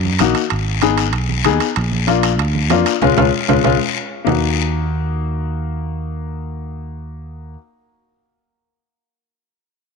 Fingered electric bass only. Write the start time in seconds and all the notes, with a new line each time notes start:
Already playing: F#2
0.20 A#1
0.52 G#1
1.14 B1
1.46 D#2
1.77 A#1
2.40 D2
2.71 F2
3.02 C#2
3.18 C#2
3.49 C#2
3.65 C#2
4.27 D#2